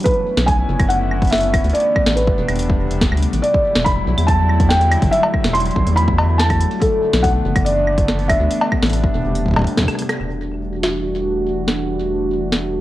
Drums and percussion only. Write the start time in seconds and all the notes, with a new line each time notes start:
0.00 closed hi-hat
0.03 kick, closed hi-hat
0.06 closed hi-hat
0.08 closed hi-hat
0.14 closed hi-hat
0.37 snare, closed hi-hat
0.48 kick, closed hi-hat
0.80 kick, closed hi-hat, claves
0.90 closed hi-hat
1.11 claves
1.22 kick, closed hi-hat
1.24 closed hi-hat
1.27 closed hi-hat
1.30 snare, closed hi-hat
1.32 closed hi-hat
1.35 closed hi-hat
1.38 closed hi-hat
1.40 closed hi-hat
1.43 closed hi-hat
1.54 kick, closed hi-hat, claves
1.64 closed hi-hat
1.69 closed hi-hat
1.75 closed hi-hat
1.80 closed hi-hat
1.96 kick, claves
2.06 snare, closed hi-hat
2.17 closed hi-hat
2.27 kick
2.49 closed hi-hat, claves
2.56 closed hi-hat
2.59 closed hi-hat
2.63 closed hi-hat
2.70 kick
2.91 closed hi-hat
3.01 kick, snare, closed hi-hat
3.12 claves
3.17 closed hi-hat
3.23 closed hi-hat
3.33 closed hi-hat
3.44 closed hi-hat
3.54 kick
3.75 snare
3.86 kick, closed hi-hat
4.18 closed hi-hat, claves
4.28 kick, closed hi-hat
4.49 claves
4.60 kick, closed hi-hat
4.70 snare, closed hi-hat
4.81 closed hi-hat
4.92 closed hi-hat, claves
5.02 kick, closed hi-hat
5.13 closed hi-hat
5.23 cowbell
5.34 kick, claves
5.44 snare, closed hi-hat
5.55 closed hi-hat
5.60 closed hi-hat
5.66 closed hi-hat
5.71 closed hi-hat
5.76 kick
5.87 closed hi-hat
5.97 closed hi-hat
6.08 kick
6.18 cowbell
6.39 snare, closed hi-hat
6.50 kick, closed hi-hat, claves
6.61 closed hi-hat
6.71 closed hi-hat
6.82 kick, closed hi-hat
7.13 snare, closed hi-hat
7.24 kick, closed hi-hat
7.56 kick, closed hi-hat, claves
7.66 closed hi-hat
7.87 claves
7.98 kick, closed hi-hat
8.08 snare, closed hi-hat
8.19 closed hi-hat
8.30 kick, closed hi-hat, claves
8.51 closed hi-hat
8.61 cowbell
8.72 kick, claves
8.82 snare, closed hi-hat
8.86 closed hi-hat
8.89 closed hi-hat
8.93 closed hi-hat
9.04 kick
9.35 closed hi-hat
9.46 kick
9.48 kick
9.51 kick
9.54 kick
9.56 kick, cross-stick, cowbell
9.59 kick
9.62 kick
9.64 kick, closed hi-hat
9.77 kick, cross-stick, snare, closed hi-hat
9.80 kick
9.83 kick
9.85 kick, cross-stick, closed hi-hat, claves
9.95 cross-stick, closed hi-hat
10.02 cross-stick
10.09 cross-stick, closed hi-hat, claves
10.83 snare
11.68 snare
12.52 snare